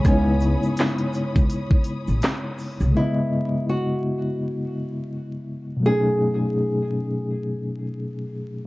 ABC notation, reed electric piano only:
X:1
M:4/4
L:1/8
Q:"Swing 16ths" 1/4=83
K:C#m
V:1 name="Reed electric piano"
[C,G,B,DE]8 | [C,G,B,Ed]8 | [B,,F,A,CDG]8 |]